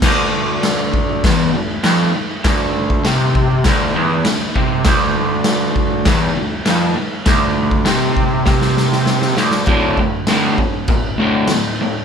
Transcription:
<<
  \new Staff \with { instrumentName = "Overdriven electric guitar" } { \clef bass \time 4/4 \key d \minor \tempo 4 = 100 d,2 e,8 d,8 f,8 r8 | d,4 c4 d,8 e,8 d,8 c8 | d,2 e,8 d,8 f,8 r8 | d,4 c4 c4. d,8 |
<d, a, d>8 <d, a,>8 <d, a, d>8 <d, a,>8 <d, a,>8 <d, a, d>8 <d, a,>8 <d, a,>8 | }
  \new DrumStaff \with { instrumentName = "Drums" } \drummode { \time 4/4 <cymc bd sn>4 <cymc sn>8 bd8 <cymc bd sn>4 <cymc sn>4 | <cymc bd sn>8. bd16 <cymc sn>8 bd8 <cymc bd sn>4 <cymc sn>8 bd8 | <cymc bd sn>4 <cymc sn>8 bd8 <cymc bd sn>4 <cymc sn>4 | <cymc bd sn>8. bd16 <cymc sn>8 bd8 <bd sn>16 sn16 sn16 sn16 sn16 sn16 sn16 sn16 |
<cymc bd>8 bd8 <cymc sn>8 bd8 <cymc bd>4 <cymc sn>4 | }
>>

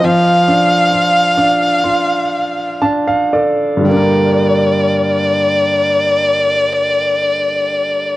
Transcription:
<<
  \new Staff \with { instrumentName = "Violin" } { \time 4/4 \key g \minor \tempo 4 = 55 f''2. r4 | d''1 | }
  \new Staff \with { instrumentName = "Grand piano" } { \time 4/4 \key g \minor << { r2. a''16 f''16 d''8 | r1 | } \\ { f8 d'8 f'8 d'8 f'4 d'8 a'8 | <g, d g bes d' bes'>1 | } >> }
>>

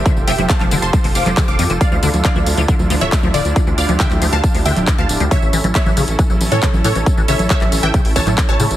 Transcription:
<<
  \new Staff \with { instrumentName = "Synth pluck" } { \time 4/4 \key d \minor \tempo 4 = 137 <c'' e''>16 r16 <e'' g''>16 r16 <f'' a''>8 r16 <a'' c'''>8 r16 <f'' d'''>8 r16 <f'' d'''>8 r16 | <d'' f''>8. r16 <d'' f''>8. r4 <cis'' e''>8 r16 <f' d''>8~ | <f' d''>16 r16 <d'' f''>16 r16 <e'' g''>8 r16 <f'' a''>8 r16 <e'' g''>8 r16 <f'' a''>8 r16 | <cis'' e''>8. r16 <cis'' e''>8. r4 <a' cis''>8 r16 <a' cis''>8~ |
<a' cis''>16 r16 <cis'' e''>16 r16 <cis'' e''>8 r16 <e'' g''>8 r16 <cis'' a''>8 r16 <cis'' a''>8 r16 | }
  \new Staff \with { instrumentName = "Supersaw synth" } { \time 4/4 \key d \minor << { <f f' g' c''>1 | <d d' e'>1~ | <d d' e'>1 | <cis' a'>1~ |
<cis' a'>1 | } \\ { a'1~ | a'1 | g'1 | e'1~ |
e'1 | } >> }
  \new Staff \with { instrumentName = "Acid bass" } { \clef bass \time 4/4 \key d \minor d16 r16 f16 e16 r16 f16 d16 r16 f16 e16 r16 f16 d16 r16 f16 e16 | r16 f16 d16 r16 f16 e16 r16 f16 d16 r16 f16 e16 r16 f16 d16 r16 | f16 e16 r16 f16 d16 r16 f16 e16 r16 f16 d16 r16 f16 e16 r16 f16 | cis16 r16 e16 e16 r16 e16 cis16 r16 e16 e16 r16 e16 cis16 r16 e16 e16 |
r16 e16 cis16 r16 e16 e16 r16 e16 cis16 r16 e16 e16 r16 e16 cis16 r16 | }
  \new Staff \with { instrumentName = "Analog synth bass" } { \clef bass \time 4/4 \key d \minor r16 f,,16 f,,16 f,,16 r16 f,,16 f,,16 f,,16 r16 f,,16 f,,16 f,,16 r16 f,,16 f,16 f,,16 | r16 d,16 d,16 d,16 r16 d,16 d,16 d,16 r16 d,16 d,16 d,,16 r16 d,16 d,,16 d,16 | r16 d,16 d,16 d,16 r16 d,16 d,16 d,16 r16 d,16 d,16 d,,16 r16 d,16 d,,16 d,16 | r16 a,,16 a,,16 a,,16 r16 a,,16 a,,16 a,,16 r16 a,,16 a,,16 a,16 r16 a,,16 a,16 a,,16 |
r16 a,,16 a,,16 a,,16 r16 a,,16 a,,16 a,,16 r16 a,,16 a,,16 a,16 r16 a,,16 a,16 a,,16 | }
  \new DrumStaff \with { instrumentName = "Drums" } \drummode { \time 4/4 <hh bd tamb>16 tamb16 <hho tamb>16 <cgho hh tamb>16 <hc hh bd tamb>16 <hc cgho tamb>16 <hho tamb>16 <hh tamb>16 <hh bd tamb>16 <hho tamb>16 <hho tamb>16 <hc cgho hh tamb>16 <hc hh bd tamb>16 tamb16 <hho tamb>16 <hh tamb>16 | <hh bd tamb>16 tamb16 <hho tamb>16 <cgho hh tamb>16 <hc hh bd tamb>16 <cgho tamb>16 <hho tamb>16 <hh tamb>16 <hh bd tamb>16 <cgho tamb>16 <hho tamb>16 <hh tamb>16 <hc hh bd tamb>16 <cgho tamb>16 <hho tamb>16 <hh tamb>16 | <hh bd tamb>16 tamb16 <hho tamb>16 <cgho hh tamb>16 <hc hh bd tamb>16 <hc cgho tamb>16 <hho tamb>16 <hh tamb>16 <hh bd tamb>16 <hho tamb>16 <hho tamb>16 <hc cgho hh tamb>16 <hc hh bd tamb>16 tamb16 <hho tamb>16 <hh tamb>16 | <hh bd tamb>16 tamb16 <hho tamb>16 <cgho hh tamb>16 <hc hh bd tamb>16 <cgho tamb>16 <hho tamb>16 <hh tamb>16 <hh bd tamb>16 <cgho tamb>16 <hho tamb>16 <hh tamb>16 <hc hh bd tamb>16 <cgho tamb>16 <hho tamb>16 <hh tamb>16 |
<hh bd tamb>16 tamb16 <hho tamb>16 <cgho hh tamb>16 <hc hh bd tamb>16 <hc cgho tamb>16 <hho tamb>16 <hh tamb>16 <hh bd tamb>16 <hho tamb>16 <hho bd tamb>16 <hc cgho hh tamb>16 <hc hh bd tamb>16 tamb16 <hho tamb>16 <hh tamb>16 | }
>>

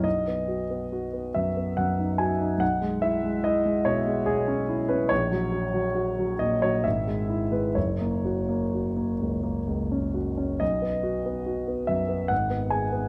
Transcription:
<<
  \new Staff \with { instrumentName = "Grand piano" } { \time 3/4 \key b \major \tempo 4 = 70 dis''4. e''8 fis''8 gis''8 | fis''8 e''8 dis''8 cis''8 gis'8. b'16 | cis''4. dis''16 cis''16 e''8. b'16 | cis''2~ cis''8 r8 |
dis''4. e''8 fis''8 gis''8 | }
  \new Staff \with { instrumentName = "Grand piano" } { \time 3/4 \key b \major b,,16 b16 fis'16 b16 fis'16 b16 fis,16 b16 fis,16 dis'16 fis'16 dis'16 | b,,16 gis16 e'16 gis16 e'16 gis16 b,16 gis16 b,16 cis'16 e'16 cis'16 | ais,,16 fis16 fis'16 fis16 fis'16 fis16 ais,16 fis16 gis,,16 gis16 e'16 gis16 | fis,,16 ais16 fis'16 ais16 fis'16 ais16 cis,16 ais16 cis,16 cis'16 fis'16 cis'16 |
b,,16 b16 fis'16 b16 fis'16 b16 fis,16 b16 gis,,16 b16 gis'16 b16 | }
>>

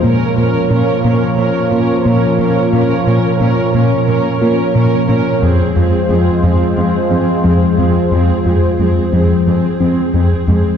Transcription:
<<
  \new Staff \with { instrumentName = "Viola section" } { \time 4/4 \key bes \minor \tempo 4 = 89 <des' bes'>8 <des' bes'>8 <des' bes'>8 <des' bes'>8 <des' bes'>8 <des' bes'>8 <des' bes'>8 <des' bes'>8 | <des' bes'>8 <des' bes'>8 <des' bes'>8 <des' bes'>8 <des' bes'>8 <des' bes'>8 <des' bes'>8 <des' bes'>8 | <c' aes'>8 <c' aes'>8 <c' aes'>8 <c' aes'>8 <c' aes'>8 <c' aes'>8 <c' aes'>8 <c' aes'>8 | <c' aes'>8 <c' aes'>8 <c' aes'>8 <c' aes'>8 <c' aes'>8 <c' aes'>8 <c' aes'>8 <c' aes'>8 | }
  \new Staff \with { instrumentName = "Analog synth pad" } { \time 4/4 \key bes \minor <f bes f' des''>1~ | <f bes f' des''>1 | <f aes f' c''>1~ | <f aes f' c''>1 | }
  \new Staff \with { instrumentName = "Synth pluck" } { \time 4/4 \key bes \minor bes8 bes'8 des'8 bes8 r8 f'8 bes8 des'8 | bes8 bes'8 des'8 bes8 r8 f'8 bes8 des'8 | f8 f'8 aes8 f8 r8 c'8 f8 r8 | f8 f'8 aes8 f8 r8 c'8 f8 aes8 | }
  \new Staff \with { instrumentName = "Analog synth bass" } { \clef bass \time 4/4 \key bes \minor bes,8 bes,8 bes,8 bes,8 bes8 bes8 bes,8 bes,8 | bes,8 bes,8 bes,8 bes,8 bes8 bes8 bes,8 bes,8 | f,8 f,8 f,8 f,8 f8 f8 f,8 f,8 | f,8 f,8 f,8 f,8 f8 f8 f,8 f,8 | }
  \new Staff \with { instrumentName = "Cello section" } { \clef bass \time 4/4 \key bes \minor bes,8 bes,8 bes,8 bes,8 bes,8 bes,8 bes,8 bes,8 | bes,8 bes,8 bes,8 bes,8 bes,8 bes,8 bes,8 bes,8 | f,8 f,8 f,8 f,8 f,8 f,8 f,8 f,8 | f,8 f,8 f,8 f,8 f,8 f,8 f,8 f,8 | }
>>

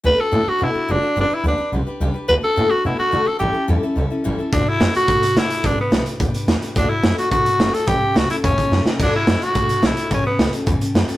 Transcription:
<<
  \new Staff \with { instrumentName = "Tenor saxophone" } { \time 4/4 \key d \major \tempo 4 = 215 b'8 a'4 fis'8 e'4 d'4 | d'8 e'8 d'4 r2 | b'8 a'4 fis'8 e'8 fis'4 a'8 | g'4 r2. |
d'8 e'4 fis'4. e'4 | d'8 b4 r2 r8 | d'8 e'4 fis'8 fis'4. a'8 | g'4 fis'8 e'8 cis'4. r8 |
d'8 e'4 fis'4. e'4 | cis'8 b4 r2 r8 | }
  \new Staff \with { instrumentName = "Steel-string acoustic guitar" } { \time 4/4 \key d \major <d a d' fis' a'>8 <d' fis' a'>8 <d a d' fis' a'>8 <d' fis' a'>8 <a d' fis' a'>8 <d' fis' a'>8 <d a d' fis' a'>8 <d' fis' a'>8 | <g d' g' b'>8 <d' g' b'>8 <g d' g' b'>8 <d' g' b'>8 <g d' g' b'>8 <d' g' b'>8 <g d' g' b'>8 <d' g' b'>8 | <d a d' fis' a'>8 <d' fis' a'>8 <d a d' fis' a'>8 <d' fis' a'>8 <a d' fis' a'>8 <d' fis' a'>8 <d a d' fis' a'>8 <d' fis' a'>8 | <a, e g cis' e' a'>8 <g cis' e' a'>8 <a, e g cis' e' a'>8 <g cis' e' a'>8 <g cis' e' a'>8 <g cis' e' a'>8 <a, e g cis' e' a'>8 <g cis' e' a'>8 |
<d a d' fis' a'>8 <d' fis' a'>8 <a d' fis'>8 <d' fis' a'>8 <d a d' fis' a'>8 <d' fis' a'>8 <a d'>8 <d' fis' a'>8 | <g d' g' b'>8 <d' g' b'>8 <g d' g' b'>8 <d' g' b'>8 <g d' g' b'>8 <d' g' b'>8 <g d' g' b'>8 <d' g' b'>8 | <d a d' fis' a'>8 <d' fis' a'>8 <a d' fis' a'>8 <d' fis' a'>8 <d a d' fis' a'>8 <d' fis' a'>8 <a d' fis' a'>8 <d' fis' a'>8 | <a, e g cis' g' a'>8 <g cis' g' a'>8 <g cis' g' a'>8 <g cis' g' a'>8 <a, e g cis' g' a'>8 <g cis' g' a'>8 <g cis' g' a'>8 <g cis' g' a'>8 |
<d a d' fis' a'>8 <d' fis' a'>8 <a d' fis' a'>8 <d' fis' a'>8 <d a d' fis' a'>8 <d' fis' a'>8 <a d' fis' a'>8 <d' fis' a'>8 | <a, e g cis' g' a'>8 <g cis' g' a'>8 <g cis' g' a'>8 <g cis' g' a'>8 <a, e g cis' g' a'>8 <g cis' g' a'>8 <g cis' g' a'>8 <g cis' g' a'>8 | }
  \new Staff \with { instrumentName = "Upright bass" } { \clef bass \time 4/4 \key d \major d,8 r8 a,8 r8 b,8 r8 fis,,8 r8 | g,,8 r8 d,8 r8 b,,8 r8 cis,8 r8 | d,8 r8 a,8 r8 b,8 r8 d8 r8 | a,,8 r8 e,8 r8 cis,8 r8 a,,8 r8 |
d,8 r8 fis,8 r8 a,8 b,8 d8 r8 | g,,8 r8 b,,8 r8 d,8 r8 e,8 r8 | d,8 r8 fis,8 r8 a,8 b,8 g,,8 r8 | a,,8 r8 cis,8 r8 e,8 r8 fis,8 r8 |
d,8 r8 fis,8 r8 a,8 b,8 b,,8 r8 | a,,8 r8 cis,8 r8 e,8 r8 fis,8 r8 | }
  \new DrumStaff \with { instrumentName = "Drums" } \drummode { \time 4/4 r4 r4 r4 r4 | r4 r4 r4 r4 | r4 r4 r4 r4 | r4 r4 r4 r4 |
<hh bd>4 <hh sn>8 hh8 <hh bd>8 hh8 <hh sn>8 hh8 | <hh bd>4 <hh sn>8 hh8 <hh bd>8 hh8 <hh sn>8 hh8 | <hh bd>4 <hh sn>8 hh8 <hh bd>8 hh8 <hh sn>8 hh8 | <hh bd>4 <hh sn>8 hh8 <hh bd>8 <hh bd>8 sn8 sn8 |
<cymc hh bd>4 <hh sn>8 hh8 <hh bd>8 hh8 <hh sn>8 hh8 | <hh bd>4 <hh sn>8 hh8 <hh bd>8 hh8 <hh sn>8 hh8 | }
>>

